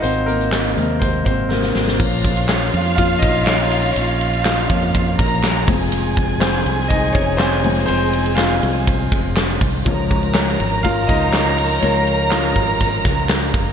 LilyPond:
<<
  \new Staff \with { instrumentName = "Violin section" } { \time 4/4 \key bes \minor \tempo 4 = 122 r1 | <f' f''>1~ | <f' f''>2~ <f' f''>8 <bes' bes''>4 <aes' aes''>8~ | <aes' aes''>1~ |
<aes' aes''>2.~ <aes' aes''>8 r8 | <bes' bes''>1~ | <bes' bes''>1 | }
  \new Staff \with { instrumentName = "Grand piano" } { \time 4/4 \key bes \minor <c' c''>8 <bes bes'>4. <c' c''>8 <c' c''>8 <bes bes'>8. r16 | r4 <des' des''>4 <f' f''>8 <ees' ees''>8 <des' des''>4 | <des' des''>4 <f' f''>2 r4 | r4 <c' c''>4 <ees' ees''>8 <des' des''>8 <c' c''>4 |
<c' c''>4 <f' f''>2 r4 | r4 <des' des''>4 <f' f''>8 <ees' ees''>8 <des' des''>4 | des''4 <f' f''>2 r4 | }
  \new Staff \with { instrumentName = "Grand piano" } { \clef bass \time 4/4 \key bes \minor r4. <c aes bes>8 r2 | <f bes des'>2 <f bes des'>8 r4. | r4. <f bes des'>4. r8 <f aes c'>8 | r2. r8 <f aes c'>8 |
r1 | <f aes des'>8 r4. <f aes des'>8 r4. | <f aes des'>8 r2. r8 | }
  \new Staff \with { instrumentName = "Fingered electric bass" } { \clef bass \time 4/4 \key bes \minor aes,,4. ees,4 aes,,4 aes,,8 | bes,,4. f,4 bes,,4. | bes,,4. f,4 bes,,4 f,,8~ | f,,4. c,4 f,,4. |
f,,4. c,4 f,,4 c,8 | des,4. aes,,4 des,4. | des,4. aes,,4 des,4 ges,,8 | }
  \new DrumStaff \with { instrumentName = "Drums" } \drummode { \time 4/4 hh8 hh16 hh16 <hc hh sn>8 hh8 <hh bd>8 <hh bd>8 sn16 sn16 sn16 sn16 | <cymc bd>8 <bd cymr>16 cymr16 <hc cymr sn>8 cymr8 <bd cymr>8 <bd cymr>8 <hc cymr sn>8 <hho cymr>8 | <hhp cymr>8 cymr16 cymr16 <hc cymr sn>8 <bd cymr>8 <bd cymr>8 <bd cymr>8 <hc cymr sn>8 <hho bd cymr>8 | <hhp cymr>8 <bd cymr>8 <hc cymr sn>8 cymr8 <bd cymr>8 <bd cymr>8 <hc cymr sn>16 cymr16 <hho cymr>8 |
<hhp cymr>8 cymr16 cymr16 <hc cymr sn>8 cymr8 <bd cymr>8 <bd cymr>8 <hc cymr sn>8 <hho bd cymr>8 | <hhp bd cymr>8 <bd cymr>16 cymr16 <hc cymr sn>8 cymr8 <bd cymr>8 <bd cymr>8 <hc cymr sn>8 <hho cymr>8 | <hhp cymr>8 cymr8 <hc cymr sn>8 <bd cymr>8 <bd cymr>8 <bd cymr sn>8 <hc cymr sn>8 <hho bd cymr>8 | }
>>